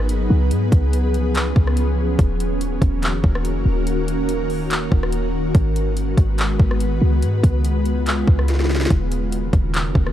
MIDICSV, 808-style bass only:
0, 0, Header, 1, 2, 480
1, 0, Start_track
1, 0, Key_signature, -6, "minor"
1, 0, Tempo, 419580
1, 585, Time_signature, 4, 2, 24, 8
1, 11583, End_track
2, 0, Start_track
2, 0, Title_t, "808-style bass"
2, 0, Program_c, 0, 38
2, 0, Note_on_c, 0, 32, 110
2, 325, Note_off_c, 0, 32, 0
2, 347, Note_on_c, 0, 37, 118
2, 587, Note_on_c, 0, 44, 101
2, 604, Note_off_c, 0, 37, 0
2, 814, Note_off_c, 0, 44, 0
2, 824, Note_on_c, 0, 37, 114
2, 1746, Note_off_c, 0, 37, 0
2, 1785, Note_on_c, 0, 37, 105
2, 2476, Note_off_c, 0, 37, 0
2, 2504, Note_on_c, 0, 27, 109
2, 3195, Note_off_c, 0, 27, 0
2, 3222, Note_on_c, 0, 27, 114
2, 3582, Note_on_c, 0, 29, 101
2, 3599, Note_off_c, 0, 27, 0
2, 3697, Note_off_c, 0, 29, 0
2, 3704, Note_on_c, 0, 27, 110
2, 4063, Note_on_c, 0, 30, 101
2, 4080, Note_off_c, 0, 27, 0
2, 4175, Note_off_c, 0, 30, 0
2, 4182, Note_on_c, 0, 27, 111
2, 5578, Note_off_c, 0, 27, 0
2, 5625, Note_on_c, 0, 27, 109
2, 6316, Note_off_c, 0, 27, 0
2, 6346, Note_on_c, 0, 32, 114
2, 7037, Note_off_c, 0, 32, 0
2, 7064, Note_on_c, 0, 32, 106
2, 7525, Note_off_c, 0, 32, 0
2, 7545, Note_on_c, 0, 32, 107
2, 8006, Note_off_c, 0, 32, 0
2, 8026, Note_on_c, 0, 37, 113
2, 8267, Note_on_c, 0, 44, 102
2, 8284, Note_off_c, 0, 37, 0
2, 8494, Note_off_c, 0, 44, 0
2, 8505, Note_on_c, 0, 37, 103
2, 9427, Note_off_c, 0, 37, 0
2, 9466, Note_on_c, 0, 37, 111
2, 10157, Note_off_c, 0, 37, 0
2, 10186, Note_on_c, 0, 27, 111
2, 10877, Note_off_c, 0, 27, 0
2, 10903, Note_on_c, 0, 27, 108
2, 11266, Note_on_c, 0, 29, 95
2, 11284, Note_off_c, 0, 27, 0
2, 11377, Note_off_c, 0, 29, 0
2, 11384, Note_on_c, 0, 27, 109
2, 11583, Note_off_c, 0, 27, 0
2, 11583, End_track
0, 0, End_of_file